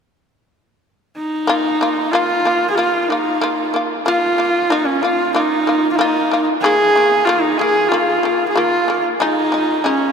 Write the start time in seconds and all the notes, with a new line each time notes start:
1.17 D#4
1.47 A#3 F4
1.81 A#3 F4
2.11 A#3 F4
2.45 A#3 F4
2.70 G#4
2.75 A#3 F4
3.02 F4
3.08 A#3 D#4 F4
3.41 A#3 F4
3.74 A#3 F4
4.06 A#3 F4
4.38 A#3 F4
4.70 A#3 D#4 F4
4.86 C#4
5.02 A#3 F4
5.34 A#3 D#4 F4
5.67 A#3 F4
5.92 F4
5.96 A#3 D#4
6.01 F4
6.31 A#3 F4
6.61 D#3 G#4
6.66 A#3
6.96 D#3 A#3
7.25 D#3 F4
7.29 A#3
7.41 D#4
7.58 D#3 A#3 G#4
7.88 D#3 F4
7.94 A#3
8.23 D#3 A#3
8.49 G#4
8.55 D#3 A#3 F4
8.88 D#3 A#3
9.20 G#3 D#4
9.52 G#3 D#4
9.84 G#3 C#4 D#4